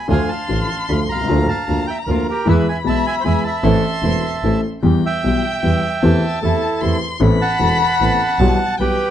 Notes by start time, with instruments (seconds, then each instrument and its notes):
0.08 grand piano D2 D3 F3 A3 F4, double bass D2, string section A3 D4 F4, bandoneon G#5, violin C6
0.12 bandoneon F5
0.29 bandoneon F5 A5
0.48 grand piano A1 A2 D3 F3 A3 F4, double bass A1, string section A3 D4 F4
0.89 grand piano D2 D3 F3 A3 F4, double bass D2, string section A3 D4 F4, bandoneon F5 B5
1.09 double bass C2, bandoneon F5 A#5
1.14 grand piano B1
1.20 grand piano C2
1.24 grand piano C#2, violin A#5
1.28 grand piano D2 D3 F3 A#3 F4, double bass D2, string section A#3 D4 F4
1.48 bandoneon F5 A5
1.68 grand piano D2 D3 F3 A#3 F4, double bass D2, string section A#3 D4 F4
1.87 bandoneon E5 G5
2.07 double bass D2, grand piano D2 D3 F3 A#3 F4, string section A#3 D4 F4, bandoneon F4 A#4
2.29 bandoneon G4 A#4
2.45 grand piano E2 E3 G#3 B3 G#4, double bass E2, string section G#3 B3 E4, bandoneon E5, violin B5
2.50 bandoneon B4
2.69 bandoneon E5 G#5
2.84 grand piano B1 B2 E3 G#3 B3 G#4, double bass B1, string section G#3 B3 E4, bandoneon A5
2.89 bandoneon E5
3.07 bandoneon E5 G#5
3.18 bandoneon C5 E5
3.24 double bass E2, grand piano E2 E3 G#3 B3 G#4, string section G#3 B3 E4, bandoneon E5 G#5
3.44 bandoneon E5 A5
3.63 grand piano A1 A2 E3 A3 C4 A4, double bass A1, string section A3 C4 E4, violin C6
4.03 double bass E1, grand piano E1 E2 E3 A3 C4 A4, string section A3 C4 E4
4.43 double bass A1, grand piano A1 A2 E3 A3 C4 A4, string section A3 C4 E4
4.82 double bass E2, grand piano E2 E3 G3 B3 G4, violin G5
5.06 bandoneon E5 G5
5.24 double bass B1, grand piano B1 B2 E3 G3 B3 G4
5.63 grand piano E2 E3 G3 B3 G4, double bass E2
6.02 grand piano E2 E3 A3 C4 G4, double bass E2, violin A5
6.42 double bass E2, grand piano E2 E3 A3 C4 G4, bandoneon E4 A4
6.81 grand piano E2 E3 A3 C4 G4, double bass E2, violin C6
7.20 grand piano A1 A2 E3 B3 C4 A4, double bass A1, violin B5
7.41 bandoneon F#5 A5
7.59 grand piano E1 E2 E3 B3 C4 A4, double bass E1
8.00 double bass A1, grand piano A1 A2 E3 B3 C4 A4
8.39 double bass B1, grand piano B1 B2 E3 G3 B3 G4, violin A5
8.78 double bass B1, grand piano B1 B2 E3 G3 B3 G4, bandoneon G4 B4, violin G5